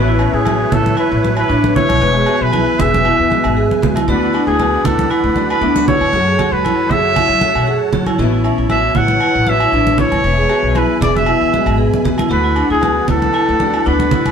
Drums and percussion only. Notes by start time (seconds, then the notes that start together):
0.19 low agogo
0.45 high conga, low agogo
0.72 low conga
0.86 high conga
0.97 low agogo
1.25 high conga
1.37 low agogo
1.64 high conga
1.76 low conga
1.89 high conga, low agogo
2.26 low agogo
2.53 high conga, low agogo
2.80 low conga
2.94 high conga
3.05 low agogo
3.32 high conga
3.44 low agogo
3.71 high conga
3.83 low conga
3.96 high conga, low agogo
4.34 low agogo
4.59 high conga, low agogo
4.85 low conga
4.99 high conga
5.11 low agogo
5.36 high conga
5.50 low agogo
5.76 high conga
5.88 low conga
6.01 low agogo
6.39 low conga, low agogo
6.65 high conga, low agogo
6.91 low conga
7.16 low conga, low agogo
7.41 high conga
7.55 low agogo
7.93 low conga
8.06 high conga, low agogo
8.44 low agogo
8.70 high conga, low agogo
8.95 low conga
9.08 high conga
9.20 low agogo
9.47 high conga
9.60 low agogo
9.87 high conga
9.98 low conga
10.12 high conga, low agogo
10.49 low agogo
10.75 high conga, low agogo
11.02 low conga
11.17 high conga
11.26 low agogo
11.54 high conga
11.67 low agogo
11.94 high conga
12.05 low conga
12.18 high conga, low agogo
12.56 low agogo
12.82 high conga, low agogo
13.08 low conga
13.22 high conga
13.34 low agogo
13.60 high conga
13.74 low agogo
14.00 high conga
14.11 low conga
14.26 high conga, low agogo